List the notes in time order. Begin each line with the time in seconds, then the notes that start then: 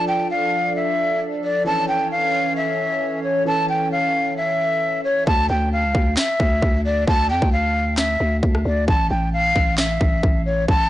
Already playing: F3 D4 A4 D5
0.08 G5
0.31 F5
0.76 E5
1.44 D5
1.64 E3 C#4 A4 C#5 A5
1.88 G5
2.11 F5
2.56 E5
3.24 C#5
3.45 E3 C#4 A4 A5
3.69 G5
3.92 F5
4.37 E5
5.04 C#5
5.27 D2 A5, kick
5.50 D2 G5
5.73 F5
5.84 C#2
5.95 D2, kick
6.17 E5, snare, clap
6.40 D2, kick
6.62 D2, kick
6.85 D5
7.08 D2 A5, kick
7.30 F2 G5
7.42 D2, kick
7.52 F5
7.97 E5, snare, clap
8.20 D2
8.43 D2, kick
8.55 cross-stick
8.65 D2 D5
8.88 A1 A5, kick
9.10 A1 G5
9.33 F5
9.56 A1, kick
9.78 E5, snare, clap
10.01 A1, kick
10.23 A1, kick
10.46 C#5
10.68 A1 A5, kick